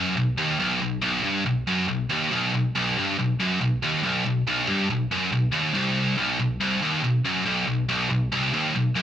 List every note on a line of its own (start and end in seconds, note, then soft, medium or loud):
0.00 0.15 F#2 loud
0.17 0.34 B1 medium
0.37 0.58 D#2 loud
0.59 0.80 B1 loud
0.81 0.98 B1 medium
1.01 1.23 B1 loud
1.24 1.44 G2 loud
1.46 1.63 B1 medium
1.67 1.88 F#2 loud
1.88 2.05 B1 medium
2.10 2.31 D#2 loud
2.32 2.52 B1 loud
2.55 2.71 B1 medium
2.75 2.96 B1 loud
2.98 3.17 G2 loud
3.18 3.35 B1 medium
3.40 3.60 F#2 loud
3.61 3.78 B1 medium
3.83 4.03 D#2 loud
4.04 4.24 B1 loud
4.26 4.42 B1 medium
4.48 4.67 B1 loud
4.69 4.89 G2 loud
4.90 5.07 B1 medium
5.12 5.32 F#2 loud
5.32 5.49 B1 medium
5.52 5.73 D#2 loud
5.74 6.16 C2 loud
6.18 6.38 B1 loud
6.39 6.56 B1 medium
6.60 6.81 C2 loud
6.82 7.03 D#2 loud
7.03 7.20 B1 medium
7.25 7.45 F#2 loud
7.45 7.65 B1 loud
7.67 7.84 B1 medium
7.89 8.08 B1 loud
8.10 8.27 B1 medium
8.32 8.52 C2 loud
8.53 8.74 D#2 medium
8.75 8.92 B1 medium
8.95 9.02 F#2 loud